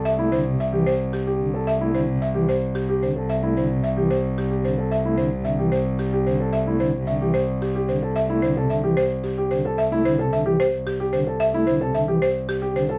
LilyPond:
<<
  \new Staff \with { instrumentName = "Marimba" } { \time 3/4 \key c \major \tempo 4 = 111 e''16 r16 c''16 r16 e''16 r16 c''16 r16 g'16 r8. | e''16 r16 c''16 r16 e''16 r16 c''16 r16 g'16 r16 c''16 r16 | e''16 r16 c''16 r16 e''16 r16 c''16 r16 g'16 r16 c''16 r16 | e''16 r16 c''16 r16 e''16 r16 c''16 r16 g'16 r16 c''16 r16 |
e''16 r16 c''16 r16 e''16 r16 c''16 r16 g'16 r16 c''16 r16 | e''16 r16 c''16 r16 e''16 r16 c''16 r16 g'16 r16 c''16 r16 | e''16 r16 c''16 r16 e''16 r16 c''16 r16 g'16 r16 c''16 r16 | e''16 r16 c''16 r16 e''16 r16 c''16 r16 g'16 r16 c''16 r16 | }
  \new Staff \with { instrumentName = "Grand piano" } { \time 3/4 \key c \major r16 e'16 r8. g'16 r8. g'16 r16 a'16 | r16 e'16 r8. g'16 r8. g'16 r16 a'16 | r16 e'16 r8. g'16 r8. g'16 r16 a'16 | r16 e'16 r8. g'16 r8. g'16 r16 a'16 |
r16 e'16 r8. g'16 r8. g'16 r16 a'16 | r16 e'16 r16 a'16 r16 g'16 r8. g'16 r16 a'16 | r16 e'16 r16 a'16 r16 g'16 r8. g'16 r16 a'16 | r16 e'16 r16 a'16 r16 g'16 r8. g'16 r16 a'16 | }
  \new Staff \with { instrumentName = "Pipe organ" } { \clef bass \time 3/4 \key c \major r16 a16 d16 c16 r16 e16 r4 d16 r16 | r16 a16 d16 c16 r16 e16 r4 d16 r16 | r16 a16 d16 c16 r16 e16 r4 d16 r16 | r16 a16 d16 c16 d16 e16 r4 d16 r16 |
r16 a16 d16 c16 d16 e16 r4 d16 r16 | r16 a16 d16 c16 d16 e16 r4 d16 r16 | r16 a16 d16 c16 d16 e16 r4 d16 r16 | r16 a16 d16 c16 d16 e16 r4 d16 r16 | }
  \new Staff \with { instrumentName = "Cello" } { \clef bass \time 3/4 \key c \major c,2.~ | c,2.~ | c,2.~ | c,2.~ |
c,2.~ | c,2.~ | c,2.~ | c,2. | }
>>